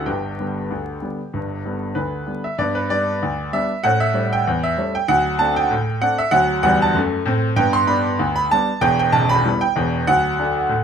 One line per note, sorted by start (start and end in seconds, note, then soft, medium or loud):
0.06 0.33 G1 medium
0.06 0.34 G2 medium
0.06 2.23 G4 medium
0.06 2.27 G5 medium
0.39 0.56 D3 soft
0.39 0.57 G3 soft
0.39 0.57 B3 soft
0.70 0.97 D2 medium
0.70 0.97 D3 medium
1.02 1.19 D3 soft
1.02 1.19 G3 soft
1.02 1.19 B3 soft
1.34 1.60 G1 medium
1.34 1.60 G2 medium
1.65 1.82 D3 soft
1.65 1.82 G3 soft
1.65 1.83 B3 soft
1.95 2.22 D2 medium
1.95 2.22 D3 medium
1.95 2.45 B4 medium
2.26 2.44 D3 soft
2.26 2.44 G3 soft
2.26 2.44 B3 soft
2.44 2.58 E5 medium
2.58 2.85 G2 medium
2.58 2.77 B3 medium
2.58 2.76 D5 medium
2.75 2.89 B4 medium
2.90 3.08 G3 soft
2.90 3.08 B3 soft
2.90 3.08 D4 medium
2.90 3.53 D5 loud
3.22 3.49 D2 medium
3.53 3.70 G3 soft
3.53 3.70 B3 soft
3.53 3.71 D4 medium
3.53 3.84 E5 medium
3.84 4.11 A2 medium
3.84 4.03 C#4 medium
3.84 4.01 F#5 loud
4.00 4.32 E5 loud
4.14 4.32 G3 soft
4.14 4.32 A3 soft
4.14 4.32 C#4 medium
4.33 4.64 G5 loud
4.47 4.73 E2 medium
4.63 4.95 E5 medium
4.77 4.94 G3 soft
4.77 4.95 A3 medium
4.77 4.95 C#4 medium
4.95 5.09 G5 loud
5.08 5.35 D2 medium
5.08 5.27 F#3 medium
5.08 5.40 F#5 loud
5.39 5.57 A3 medium
5.39 5.57 C4 medium
5.39 5.57 D4 medium
5.39 5.57 A5 loud
5.56 6.02 G5 loud
5.71 5.97 A2 medium
6.01 6.19 A3 medium
6.01 6.19 C4 medium
6.01 6.19 D4 medium
6.01 6.19 F#5 loud
6.18 6.33 E5 loud
6.31 6.57 D2 medium
6.31 6.58 F#3 medium
6.31 6.62 F#5 loud
6.63 6.88 E2 medium
6.63 6.90 G3 medium
6.63 6.81 F#5 loud
6.82 6.96 A5 loud
6.94 7.20 F#2 medium
6.94 7.21 A3 medium
7.26 7.51 A2 medium
7.26 7.52 C4 medium
7.56 7.83 G2 loud
7.56 7.76 B3 medium
7.56 7.75 G5 loud
7.73 7.88 C6 loud
7.87 8.05 G3 medium
7.87 8.05 B3 medium
7.87 8.06 D4 medium
7.87 8.34 B5 loud
8.19 8.46 D2 medium
8.36 8.50 B5 loud
8.51 8.69 G3 medium
8.51 8.69 B3 medium
8.51 8.69 D4 medium
8.51 8.83 A5 loud
8.81 9.07 E1 medium
8.81 9.07 E2 loud
8.81 8.98 G5 loud
8.99 9.13 G5 loud
9.12 9.38 B0 medium
9.12 9.38 B1 medium
9.12 9.31 A5 loud
9.29 9.62 B5 loud
9.44 9.62 G3 medium
9.44 9.62 B3 medium
9.44 9.62 E4 medium
9.61 10.07 G5 loud
9.76 10.01 E1 medium
9.76 10.01 E2 medium
10.07 10.34 D2 medium
10.07 10.26 F#3 medium
10.07 10.84 F#5 loud
10.39 10.56 A3 soft
10.39 10.56 D4 medium
10.39 10.56 A4 medium
10.69 10.84 A2 medium